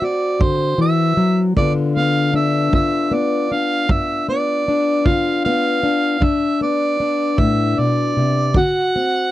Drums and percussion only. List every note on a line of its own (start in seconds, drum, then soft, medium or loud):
0.41 kick medium
1.57 kick medium
2.73 kick medium
3.89 kick medium
5.06 kick medium
6.22 kick medium
7.38 kick medium
8.54 kick medium